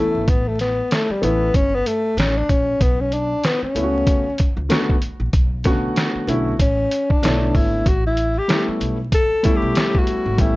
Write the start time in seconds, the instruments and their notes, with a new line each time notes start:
Already playing: grand piano E3 A3 B3 C#4 E4, tenor saxophone A3
0.15 upright bass G#1
0.28 upright bass A1, tenor saxophone B3, kick, closed hi-hat
0.48 tenor saxophone A3
0.59 tenor saxophone B3, snare, closed hi-hat
0.91 tenor saxophone A3, snare, closed hi-hat
1.10 tenor saxophone G3, muted upright bass stroke
1.22 upright bass A1, grand piano E3 A3 B3 C#4 E4, tenor saxophone B3, closed hi-hat
1.54 upright bass G1, tenor saxophone C#4, kick, closed hi-hat
1.75 tenor saxophone B3
1.86 tenor saxophone A3, closed hi-hat
2.17 upright bass A1, tenor saxophone C#4, snare, closed hi-hat
2.38 tenor saxophone D4
2.49 upright bass A#1, tenor saxophone C#4, kick, closed hi-hat
2.81 upright bass B1, tenor saxophone B3, kick, closed hi-hat
3.01 tenor saxophone C#4
3.12 tenor saxophone D4, closed hi-hat
3.43 tenor saxophone B3, snare, closed hi-hat
3.62 tenor saxophone C#4, muted upright bass stroke
3.75 upright bass C#2, grand piano C#3 A3 B3 C#4 E4, closed hi-hat
3.83 grand piano F#4
4.07 kick, closed hi-hat
4.38 kick, closed hi-hat
4.57 upright bass C#2
4.69 grand piano D3 A3 B3 C#4 F#4, snare, closed hi-hat
4.89 kick
5.02 closed hi-hat
5.20 upright bass A#1
5.33 upright bass B1, kick, closed hi-hat
5.64 grand piano C#3 A3 B3 C#4 F#4, kick, snare, closed hi-hat
5.71 grand piano D3
5.96 snare, closed hi-hat
6.15 muted upright bass stroke
6.27 upright bass B1, grand piano D3 A3 B3 C#4 E4, closed hi-hat
6.59 upright bass A1, tenor saxophone C#4, kick, closed hi-hat
6.91 closed hi-hat
7.10 tenor saxophone D4, kick
7.22 upright bass B1, grand piano D3 A3 B3 E4 C#5, snare, closed hi-hat
7.55 upright bass G#1, tenor saxophone E4, kick, open hi-hat
7.86 upright bass A1, tenor saxophone F#4, kick, closed hi-hat
8.06 tenor saxophone E4
8.17 closed hi-hat
8.38 tenor saxophone G4
8.48 grand piano G3 A3 B3 C#4 E4, snare, closed hi-hat
8.68 muted upright bass stroke
8.80 upright bass B1, closed hi-hat
9.12 tenor saxophone A4, kick, closed hi-hat
9.43 grand piano G3 A3 B3 C#4 E4, kick, closed hi-hat
9.56 tenor saxophone G4
9.62 upright bass B1
9.75 snare, closed hi-hat
9.95 tenor saxophone F#4, kick
10.07 closed hi-hat
10.26 upright bass G#1
10.37 upright bass A1, grand piano G3 A3 B3 C#4 G4, tenor saxophone E4, kick, closed hi-hat